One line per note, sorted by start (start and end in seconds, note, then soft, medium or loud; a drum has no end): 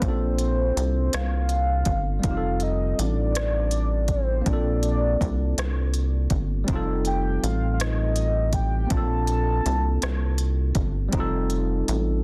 0.00 0.72 A#1 loud
0.00 2.18 A#3 soft
0.00 2.19 C4 soft
0.00 0.09 C#4 soft
0.00 1.15 C5 medium
0.00 kick medium
0.00 closed hi-hat soft
0.06 2.24 D4 medium
0.06 2.22 F4 soft
0.06 2.23 A4 medium
0.38 closed hi-hat soft
0.77 1.10 C2 loud
0.77 closed hi-hat medium
1.13 1.83 C2 medium
1.13 2.25 F5 loud
1.13 cross-stick medium
1.13 closed hi-hat medium
1.49 closed hi-hat soft
1.85 2.20 G1 medium
1.85 kick medium
1.85 closed hi-hat soft
2.19 4.40 G3 medium
2.19 4.41 C4 medium
2.23 2.94 F1 loud
2.23 4.43 D#4 medium
2.23 2.64 F5 loud
2.23 kick medium
2.23 closed hi-hat medium
2.28 4.44 F4 soft
2.28 2.34 G4 medium
2.37 4.49 A4 medium
2.60 3.01 D#5 medium
2.60 closed hi-hat soft
2.99 4.43 A1 medium
2.99 4.13 D5 loud
2.99 closed hi-hat medium
3.35 cross-stick medium
3.35 closed hi-hat medium
3.71 closed hi-hat soft
4.08 4.49 C5 medium
4.08 kick medium
4.08 closed hi-hat soft
4.41 6.62 A#3 medium
4.41 6.63 C4 medium
4.46 5.17 A#1 medium
4.46 6.65 D4 soft
4.46 6.32 D5 medium
4.46 kick medium
4.46 closed hi-hat soft
4.50 6.66 F4 soft
4.50 6.68 A4 medium
4.83 closed hi-hat soft
5.21 5.54 C2 loud
5.21 kick medium
5.21 closed hi-hat medium
5.58 6.28 C2 medium
5.58 cross-stick medium
5.58 closed hi-hat medium
5.94 closed hi-hat soft
6.30 6.65 G1 medium
6.30 kick medium
6.30 closed hi-hat soft
6.64 8.84 G3 medium
6.64 8.86 C4 medium
6.64 closed hi-hat medium
6.68 7.39 F1 medium
6.68 8.87 D#4 medium
6.68 kick medium
6.72 8.89 F4 medium
6.72 8.90 A4 medium
7.05 7.45 G5 medium
7.05 closed hi-hat soft
7.43 8.87 A1 medium
7.43 7.74 F5 medium
7.43 closed hi-hat soft
7.74 7.82 F5 medium
7.80 8.55 D#5 medium
7.80 cross-stick medium
7.80 closed hi-hat medium
8.16 closed hi-hat soft
8.53 8.93 G5 medium
8.53 kick medium
8.53 closed hi-hat soft
8.86 11.06 A#3 medium
8.86 11.08 C4 soft
8.90 9.61 A#1 medium
8.90 11.09 D4 soft
8.90 11.11 F4 medium
8.90 10.76 A5 loud
8.90 kick medium
8.90 closed hi-hat medium
8.97 11.12 A4 medium
9.27 closed hi-hat soft
9.66 9.99 C2 loud
9.66 closed hi-hat soft
10.02 10.72 C2 medium
10.02 cross-stick medium
10.02 closed hi-hat medium
10.38 closed hi-hat soft
10.75 11.09 G1 medium
10.75 kick medium
10.75 closed hi-hat soft
11.08 12.23 G3 medium
11.08 12.23 C4 medium
11.12 11.83 F1 loud
11.12 12.23 D#4 medium
11.12 kick medium
11.12 closed hi-hat medium
11.17 12.23 F4 medium
11.17 12.23 A4 medium
11.50 closed hi-hat soft
11.88 12.23 A1 loud
11.88 closed hi-hat medium